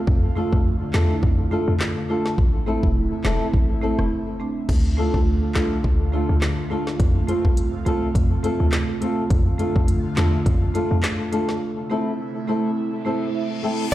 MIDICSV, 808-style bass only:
0, 0, Header, 1, 2, 480
1, 0, Start_track
1, 0, Key_signature, -1, "minor"
1, 0, Tempo, 576923
1, 62, Time_signature, 4, 2, 24, 8
1, 11601, End_track
2, 0, Start_track
2, 0, Title_t, "808-style bass"
2, 0, Program_c, 0, 38
2, 62, Note_on_c, 0, 41, 107
2, 391, Note_off_c, 0, 41, 0
2, 437, Note_on_c, 0, 41, 100
2, 648, Note_off_c, 0, 41, 0
2, 782, Note_on_c, 0, 40, 95
2, 900, Note_off_c, 0, 40, 0
2, 1022, Note_on_c, 0, 41, 103
2, 1352, Note_off_c, 0, 41, 0
2, 1396, Note_on_c, 0, 41, 86
2, 1489, Note_off_c, 0, 41, 0
2, 1982, Note_on_c, 0, 33, 104
2, 2311, Note_off_c, 0, 33, 0
2, 2357, Note_on_c, 0, 28, 92
2, 2568, Note_off_c, 0, 28, 0
2, 2701, Note_on_c, 0, 28, 93
2, 2820, Note_off_c, 0, 28, 0
2, 2942, Note_on_c, 0, 33, 99
2, 3271, Note_off_c, 0, 33, 0
2, 3316, Note_on_c, 0, 29, 81
2, 3409, Note_off_c, 0, 29, 0
2, 3901, Note_on_c, 0, 38, 107
2, 4231, Note_off_c, 0, 38, 0
2, 4277, Note_on_c, 0, 38, 85
2, 4488, Note_off_c, 0, 38, 0
2, 4621, Note_on_c, 0, 36, 94
2, 4740, Note_off_c, 0, 36, 0
2, 4861, Note_on_c, 0, 38, 86
2, 5191, Note_off_c, 0, 38, 0
2, 5236, Note_on_c, 0, 38, 86
2, 5329, Note_off_c, 0, 38, 0
2, 5820, Note_on_c, 0, 41, 109
2, 6150, Note_off_c, 0, 41, 0
2, 6196, Note_on_c, 0, 36, 88
2, 6407, Note_off_c, 0, 36, 0
2, 6541, Note_on_c, 0, 36, 89
2, 6659, Note_off_c, 0, 36, 0
2, 6781, Note_on_c, 0, 41, 97
2, 7111, Note_off_c, 0, 41, 0
2, 7155, Note_on_c, 0, 38, 90
2, 7249, Note_off_c, 0, 38, 0
2, 7741, Note_on_c, 0, 41, 105
2, 8071, Note_off_c, 0, 41, 0
2, 8118, Note_on_c, 0, 41, 98
2, 8328, Note_off_c, 0, 41, 0
2, 8463, Note_on_c, 0, 40, 96
2, 8581, Note_off_c, 0, 40, 0
2, 8703, Note_on_c, 0, 41, 100
2, 9032, Note_off_c, 0, 41, 0
2, 9077, Note_on_c, 0, 41, 90
2, 9170, Note_off_c, 0, 41, 0
2, 11601, End_track
0, 0, End_of_file